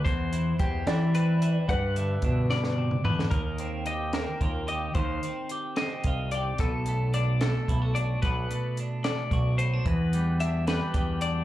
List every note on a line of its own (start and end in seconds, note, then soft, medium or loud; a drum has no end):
0.05 1.67 E2 medium
0.05 0.52 E2 loud
0.05 0.60 C5 medium
0.05 kick medium
0.05 closed hi-hat medium
0.33 1.66 E3 medium
0.33 closed hi-hat medium
0.59 0.83 E2 medium
0.59 1.14 C4 medium
0.59 1.15 G4 medium
0.59 kick medium
0.59 closed hi-hat medium
0.87 1.57 E3 medium
0.87 1.41 E4 medium
0.87 1.65 D5 medium
0.87 snare medium
0.87 closed hi-hat medium
1.15 1.66 C4 medium
1.15 1.69 B4 medium
1.15 closed hi-hat medium
1.42 1.70 E4 medium
1.42 closed hi-hat medium
1.68 3.29 G2 medium
1.68 2.16 G2 medium
1.68 2.75 B4 medium
1.68 1.97 F#5 medium
1.68 kick loud
1.68 closed hi-hat medium
1.96 3.04 D3 medium
1.96 2.50 E5 medium
1.96 closed hi-hat medium
2.22 2.93 B2 medium
2.22 3.30 D4 medium
2.22 kick medium
2.22 closed hi-hat medium
2.50 2.78 B2 medium
2.50 3.05 D5 medium
2.50 snare medium
2.64 snare medium
2.78 3.06 C3 medium
2.91 mid tom medium
3.04 3.28 E2 medium
3.04 3.32 D3 medium
3.04 3.30 B4 medium
3.04 floor tom medium
3.19 snare medium
3.31 4.25 D#2 medium
3.31 4.93 D#3 medium
3.31 3.86 A#4 medium
3.31 kick medium
3.31 closed hi-hat medium
3.58 4.14 C4 medium
3.58 closed hi-hat medium
3.86 4.41 G4 medium
3.86 4.14 D#5 medium
3.86 closed hi-hat medium
4.13 4.93 C4 soft
4.13 4.69 A#4 medium
4.13 snare medium
4.13 closed hi-hat medium
4.41 4.88 D#2 medium
4.41 4.67 F4 medium
4.41 kick medium
4.41 closed hi-hat medium
4.68 4.92 G4 medium
4.68 4.95 D#5 medium
4.68 closed hi-hat soft
4.95 5.19 D#2 medium
4.95 6.57 D#3 medium
4.95 5.50 C5 medium
4.95 kick medium
4.95 closed hi-hat medium
5.23 5.79 C4 medium
5.23 closed hi-hat medium
5.49 6.06 G4 medium
5.49 closed hi-hat medium
5.76 6.31 D#5 medium
5.76 snare loud
5.76 closed hi-hat medium
5.81 6.58 C4 medium
6.04 6.51 C2 medium
6.04 6.33 F4 medium
6.04 kick medium
6.04 closed hi-hat medium
6.31 6.58 G4 medium
6.31 6.60 D5 medium
6.31 closed hi-hat medium
6.58 7.52 B1 medium
6.58 8.20 B2 medium
6.58 7.14 A4 medium
6.58 kick medium
6.58 closed hi-hat medium
6.86 7.42 A3 medium
6.86 closed hi-hat medium
7.14 7.95 D4 medium
7.14 7.42 D5 medium
7.14 closed hi-hat medium
7.41 8.20 A3 medium
7.41 7.96 A4 medium
7.41 snare medium
7.41 closed hi-hat medium
7.68 8.15 B1 medium
7.68 7.82 E4 medium
7.68 kick medium
7.68 closed hi-hat medium
7.82 8.23 F#4 soft
7.95 8.80 D4 soft
7.95 8.22 D5 medium
7.95 closed hi-hat medium
8.22 8.46 B1 medium
8.22 9.83 B2 medium
8.22 8.77 B4 medium
8.22 kick medium
8.22 closed hi-hat medium
8.51 9.04 A3 medium
8.51 closed hi-hat medium
8.77 9.58 D4 medium
8.77 closed hi-hat medium
9.04 9.83 A3 soft
9.04 9.58 D5 medium
9.04 snare loud
9.04 closed hi-hat medium
9.31 9.78 B1 medium
9.31 9.84 F#4 medium
9.31 kick medium
9.31 closed hi-hat soft
9.58 9.74 B3 medium
9.58 9.86 C5 medium
9.58 closed hi-hat soft
9.74 9.87 D4 soft
9.85 10.79 E2 medium
9.85 11.44 E2 medium
9.85 10.40 B4 medium
9.85 kick medium
9.85 closed hi-hat medium
10.13 10.67 G3 medium
10.13 closed hi-hat medium
10.40 11.20 D4 medium
10.40 10.67 E5 medium
10.40 closed hi-hat medium
10.67 11.44 G3 medium
10.67 11.21 B4 medium
10.67 snare medium
10.67 closed hi-hat medium
10.94 11.41 E2 medium
10.94 11.44 G4 medium
10.94 kick medium
10.94 closed hi-hat medium
11.21 11.44 D4 medium
11.21 11.44 D5 medium
11.21 closed hi-hat medium